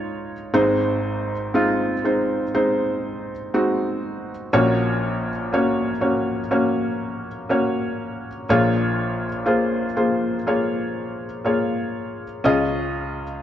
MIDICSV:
0, 0, Header, 1, 2, 480
1, 0, Start_track
1, 0, Tempo, 991736
1, 266, Time_signature, 4, 2, 24, 8
1, 6497, End_track
2, 0, Start_track
2, 0, Title_t, "Felt piano"
2, 0, Program_c, 0, 0
2, 0, Control_c, 0, 64, 127
2, 0, Note_on_c, 0, 37, 57
2, 0, Note_on_c, 0, 49, 57
2, 0, Note_on_c, 0, 56, 67
2, 0, Note_on_c, 0, 63, 60
2, 0, Note_on_c, 0, 65, 62
2, 0, Note_on_c, 0, 73, 74
2, 156, Note_off_c, 0, 56, 0
2, 157, Note_off_c, 0, 63, 0
2, 157, Note_off_c, 0, 73, 0
2, 158, Note_off_c, 0, 65, 0
2, 246, Note_off_c, 0, 37, 0
2, 248, Note_off_c, 0, 49, 0
2, 260, Note_on_c, 0, 44, 62
2, 260, Note_on_c, 0, 56, 87
2, 260, Note_on_c, 0, 60, 83
2, 260, Note_on_c, 0, 63, 78
2, 262, Note_on_c, 0, 32, 60
2, 262, Note_on_c, 0, 72, 99
2, 273, Control_c, 0, 64, 0
2, 352, Control_c, 0, 64, 127
2, 637, Note_off_c, 0, 60, 0
2, 637, Note_off_c, 0, 63, 0
2, 638, Note_off_c, 0, 56, 0
2, 639, Note_off_c, 0, 72, 0
2, 745, Note_on_c, 0, 60, 68
2, 746, Note_on_c, 0, 56, 74
2, 747, Note_on_c, 0, 63, 66
2, 749, Note_on_c, 0, 65, 84
2, 933, Note_off_c, 0, 56, 0
2, 933, Note_off_c, 0, 60, 0
2, 934, Note_off_c, 0, 63, 0
2, 935, Note_off_c, 0, 65, 0
2, 988, Note_on_c, 0, 56, 55
2, 991, Note_on_c, 0, 60, 53
2, 993, Note_on_c, 0, 72, 70
2, 994, Note_on_c, 0, 63, 52
2, 1174, Note_off_c, 0, 56, 0
2, 1176, Note_off_c, 0, 60, 0
2, 1177, Note_off_c, 0, 63, 0
2, 1177, Note_off_c, 0, 72, 0
2, 1232, Note_on_c, 0, 56, 69
2, 1232, Note_on_c, 0, 60, 63
2, 1232, Note_on_c, 0, 72, 75
2, 1233, Note_on_c, 0, 63, 63
2, 1603, Note_off_c, 0, 56, 0
2, 1603, Note_off_c, 0, 60, 0
2, 1603, Note_off_c, 0, 72, 0
2, 1604, Note_off_c, 0, 63, 0
2, 1712, Note_on_c, 0, 56, 67
2, 1713, Note_on_c, 0, 60, 62
2, 1715, Note_on_c, 0, 63, 58
2, 1715, Note_on_c, 0, 66, 81
2, 2083, Note_off_c, 0, 56, 0
2, 2083, Note_off_c, 0, 60, 0
2, 2084, Note_off_c, 0, 63, 0
2, 2084, Note_off_c, 0, 66, 0
2, 2164, Note_off_c, 0, 32, 0
2, 2164, Note_off_c, 0, 44, 0
2, 2192, Control_c, 0, 64, 0
2, 2193, Note_on_c, 0, 58, 89
2, 2193, Note_on_c, 0, 61, 85
2, 2193, Note_on_c, 0, 66, 78
2, 2195, Note_on_c, 0, 34, 64
2, 2195, Note_on_c, 0, 73, 100
2, 2196, Note_on_c, 0, 46, 64
2, 2275, Control_c, 0, 64, 127
2, 2563, Note_off_c, 0, 58, 0
2, 2563, Note_off_c, 0, 61, 0
2, 2563, Note_off_c, 0, 66, 0
2, 2564, Note_off_c, 0, 73, 0
2, 2674, Note_on_c, 0, 58, 71
2, 2680, Note_on_c, 0, 61, 66
2, 2680, Note_on_c, 0, 66, 63
2, 2680, Note_on_c, 0, 73, 81
2, 2857, Note_off_c, 0, 58, 0
2, 2860, Note_off_c, 0, 61, 0
2, 2860, Note_off_c, 0, 66, 0
2, 2860, Note_off_c, 0, 73, 0
2, 2907, Note_on_c, 0, 58, 59
2, 2910, Note_on_c, 0, 61, 58
2, 2910, Note_on_c, 0, 66, 56
2, 2912, Note_on_c, 0, 73, 61
2, 3093, Note_off_c, 0, 58, 0
2, 3094, Note_off_c, 0, 61, 0
2, 3094, Note_off_c, 0, 66, 0
2, 3095, Note_off_c, 0, 73, 0
2, 3150, Note_on_c, 0, 58, 68
2, 3150, Note_on_c, 0, 66, 61
2, 3152, Note_on_c, 0, 61, 65
2, 3154, Note_on_c, 0, 73, 74
2, 3521, Note_off_c, 0, 58, 0
2, 3521, Note_off_c, 0, 66, 0
2, 3522, Note_off_c, 0, 61, 0
2, 3523, Note_off_c, 0, 73, 0
2, 3627, Note_on_c, 0, 58, 66
2, 3630, Note_on_c, 0, 61, 62
2, 3631, Note_on_c, 0, 66, 61
2, 3633, Note_on_c, 0, 73, 71
2, 4000, Note_off_c, 0, 58, 0
2, 4001, Note_off_c, 0, 61, 0
2, 4002, Note_off_c, 0, 66, 0
2, 4003, Note_off_c, 0, 73, 0
2, 4090, Note_off_c, 0, 34, 0
2, 4091, Note_off_c, 0, 46, 0
2, 4110, Note_on_c, 0, 58, 84
2, 4112, Control_c, 0, 64, 0
2, 4113, Note_on_c, 0, 34, 60
2, 4114, Note_on_c, 0, 65, 86
2, 4114, Note_on_c, 0, 73, 97
2, 4115, Note_on_c, 0, 46, 61
2, 4116, Note_on_c, 0, 68, 80
2, 4208, Control_c, 0, 64, 127
2, 4481, Note_off_c, 0, 58, 0
2, 4484, Note_off_c, 0, 65, 0
2, 4484, Note_off_c, 0, 68, 0
2, 4484, Note_off_c, 0, 73, 0
2, 4577, Note_on_c, 0, 58, 66
2, 4579, Note_on_c, 0, 65, 65
2, 4580, Note_on_c, 0, 72, 76
2, 4583, Note_on_c, 0, 68, 63
2, 4768, Note_off_c, 0, 58, 0
2, 4769, Note_off_c, 0, 65, 0
2, 4770, Note_off_c, 0, 72, 0
2, 4771, Note_off_c, 0, 68, 0
2, 4821, Note_on_c, 0, 58, 55
2, 4824, Note_on_c, 0, 65, 52
2, 4824, Note_on_c, 0, 72, 67
2, 4825, Note_on_c, 0, 68, 50
2, 5010, Note_off_c, 0, 58, 0
2, 5012, Note_off_c, 0, 65, 0
2, 5012, Note_off_c, 0, 68, 0
2, 5012, Note_off_c, 0, 72, 0
2, 5066, Note_on_c, 0, 58, 64
2, 5067, Note_on_c, 0, 65, 55
2, 5068, Note_on_c, 0, 68, 55
2, 5070, Note_on_c, 0, 73, 68
2, 5440, Note_off_c, 0, 58, 0
2, 5441, Note_off_c, 0, 65, 0
2, 5441, Note_off_c, 0, 68, 0
2, 5442, Note_off_c, 0, 73, 0
2, 5539, Note_on_c, 0, 58, 64
2, 5543, Note_on_c, 0, 65, 56
2, 5544, Note_on_c, 0, 68, 62
2, 5545, Note_on_c, 0, 73, 74
2, 5918, Note_off_c, 0, 58, 0
2, 5920, Note_off_c, 0, 65, 0
2, 5920, Note_off_c, 0, 68, 0
2, 5920, Note_off_c, 0, 73, 0
2, 6012, Note_off_c, 0, 34, 0
2, 6013, Note_off_c, 0, 46, 0
2, 6022, Note_on_c, 0, 61, 92
2, 6024, Note_on_c, 0, 49, 57
2, 6026, Note_on_c, 0, 37, 56
2, 6027, Note_on_c, 0, 65, 78
2, 6027, Note_on_c, 0, 68, 79
2, 6027, Note_on_c, 0, 75, 96
2, 6034, Control_c, 0, 64, 0
2, 6108, Control_c, 0, 64, 127
2, 6399, Note_off_c, 0, 61, 0
2, 6402, Note_off_c, 0, 65, 0
2, 6402, Note_off_c, 0, 68, 0
2, 6402, Note_off_c, 0, 75, 0
2, 6497, Note_off_c, 0, 37, 0
2, 6497, Note_off_c, 0, 49, 0
2, 6497, End_track
0, 0, End_of_file